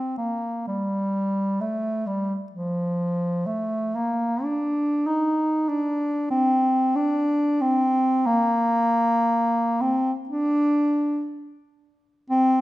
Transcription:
Already playing: C4
0.17 A#3
0.67 G3
1.61 A3
2.06 G3
2.52 F3
3.46 A3
3.95 A#3
4.43 D4
5.07 D#4
5.69 D4
6.30 C4
6.95 D4
7.61 C4
8.26 A#3
9.81 C4
10.29 D4
12.30 C4

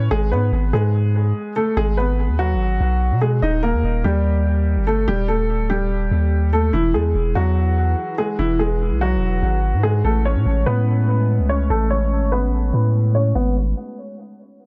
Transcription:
0.11 G#1 G#3 G#4
0.32 G#2 B3 B4
0.52 G#1
0.73 G#2 G#3 G#4
1.56 A3 A4
1.77 G#1 G#3 G#4
1.97 B3 B4
2.28 D#2
2.39 F#3 F#4
2.54 G#1
2.80 B1
3.11 B2
3.21 G#3 G#4
3.42 D#1 D#4 D#5
3.63 A#3 A#4
3.73 D#2
3.83 D#1
4.04 D#2 G3 G4
4.77 G1
4.87 A3 A4
5.08 D#1 G3 G4
5.28 A3 A4
5.59 D1
5.70 G3 G4
5.85 D#1
6.11 D#2
6.53 A3 A4
6.73 E1 E3 E4 G#4 B4
6.94 E2 G#3 G#4
7.15 E1
7.35 E2 F#3 F#4
8.18 G#3 G#4
8.39 E1 E3 E4
8.59 G#3 G#4
8.91 B1
9.01 F#3 F#4
9.16 E1
9.42 G#1
9.73 G#2
9.83 G#3 G#4
10.04 A1 G#3 A3 C#4 A4
10.25 C#4 C#5
10.35 A2
10.46 A1
10.66 A2 B3 B4
11.39 C#2
11.49 C#4 C#5
11.70 A1 A3 A4
11.90 C#4 C#5
12.22 G#1
12.32 B3 B4
12.47 A1
12.73 A2
13.15 C#4 C#5
13.35 G#1 B3

